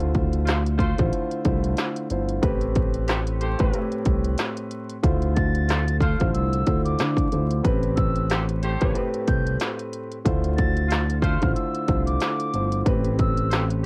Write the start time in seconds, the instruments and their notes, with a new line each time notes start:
Already playing: analog synth bass D2, grand piano D3 A3 E4 F4 C5
0.00 closed hi-hat
0.15 kick, closed hi-hat
0.33 closed hi-hat
0.45 horn section A3 F4 C5, cross-stick, snare, closed hi-hat
0.66 closed hi-hat
0.78 horn section A3 F4 C5, kick, closed hi-hat
0.98 analog synth bass A1, grand piano D3 A3 E4 F4 C5, kick, closed hi-hat
1.13 closed hi-hat
1.31 closed hi-hat
1.44 analog synth bass C2, grand piano D3 A3 E4 F4 C5, kick, closed hi-hat
1.64 closed hi-hat
1.77 cross-stick, snare, closed hi-hat
1.96 closed hi-hat
2.10 analog synth bass G1, grand piano D3 A3 E4 F4 C5, closed hi-hat
2.29 closed hi-hat
2.42 analog synth bass A1, grand piano A2 A3 C4 G4 B4, kick, closed hi-hat
2.61 closed hi-hat
2.75 kick, closed hi-hat
2.94 closed hi-hat
3.08 horn section A3 G4 C5, cross-stick, snare, closed hi-hat
3.27 closed hi-hat
3.40 horn section A3 G4 C5, closed hi-hat
3.59 analog synth bass A1, grand piano A2 A3 C4 G4 B4, kick, closed hi-hat
3.72 grand piano A2 A3 C4 G4 B4, closed hi-hat
3.92 closed hi-hat
4.05 analog synth bass C2, kick, closed hi-hat
4.25 closed hi-hat
4.38 cross-stick, snare, closed hi-hat
4.57 closed hi-hat
4.71 closed hi-hat
4.90 closed hi-hat
5.03 analog synth bass D2, grand piano D3 A3 E4 F4 C5, kick, closed hi-hat
5.22 closed hi-hat
5.35 flute A6, kick, closed hi-hat
5.55 closed hi-hat
5.68 horn section A3 F4 C5, cross-stick, snare, closed hi-hat
5.88 closed hi-hat
6.00 horn section A3 F4 C5, flute F6, kick, snare, closed hi-hat
6.20 analog synth bass A1, grand piano D3 A3 E4 F4 C5, kick, closed hi-hat
6.34 analog synth bass C2, flute E6, closed hi-hat
6.53 closed hi-hat
6.66 analog synth bass D2, grand piano D3 A3 E4 F4 C5, kick, closed hi-hat
6.85 flute D6, closed hi-hat
6.99 analog synth bass D3, cross-stick, snare, closed hi-hat
7.17 kick, closed hi-hat
7.32 analog synth bass D2, grand piano D3 A3 E4 F4 C5, closed hi-hat
7.51 closed hi-hat
7.63 analog synth bass A1, grand piano A2 A3 C4 G4 B4, kick, closed hi-hat
7.83 closed hi-hat
7.96 flute E6, kick, closed hi-hat
8.16 closed hi-hat
8.30 horn section A3 G4 C5, cross-stick, snare, closed hi-hat
8.49 closed hi-hat
8.62 horn section A3 G4 C5, closed hi-hat
8.80 analog synth bass A1, grand piano A2 A3 C4 G4 B4, kick, closed hi-hat
8.94 grand piano A2 A3 C4 G4 B4, closed hi-hat
9.14 closed hi-hat
9.27 analog synth bass C2, flute G6, kick, closed hi-hat
9.47 closed hi-hat
9.60 cross-stick, snare, closed hi-hat
9.79 closed hi-hat
9.93 closed hi-hat
10.12 closed hi-hat
10.24 analog synth bass D2, grand piano D3 A3 E4 F4 C5, kick, closed hi-hat
10.44 closed hi-hat
10.57 flute A6, kick, closed hi-hat
10.77 closed hi-hat
10.88 horn section A3 F4 C5, cross-stick, snare, closed hi-hat
11.10 closed hi-hat
11.22 horn section A3 F4 C5, flute F6, kick, closed hi-hat
11.41 analog synth bass A1, grand piano D3 A3 E4 F4 C5, kick, closed hi-hat
11.55 flute E6, closed hi-hat
11.75 closed hi-hat
11.88 analog synth bass C2, grand piano D3 A3 E4 F4 C5, kick, closed hi-hat
12.06 flute D6, closed hi-hat
12.21 cross-stick, snare, closed hi-hat
12.40 closed hi-hat
12.54 analog synth bass G1, grand piano D3 A3 E4 F4 C5, closed hi-hat
12.72 closed hi-hat
12.85 analog synth bass A1, grand piano A2 A3 C4 G4 B4, kick, closed hi-hat
13.05 closed hi-hat
13.19 flute E6, kick, closed hi-hat
13.37 closed hi-hat
13.51 horn section A3 G4 C5, cross-stick, snare, closed hi-hat
13.70 closed hi-hat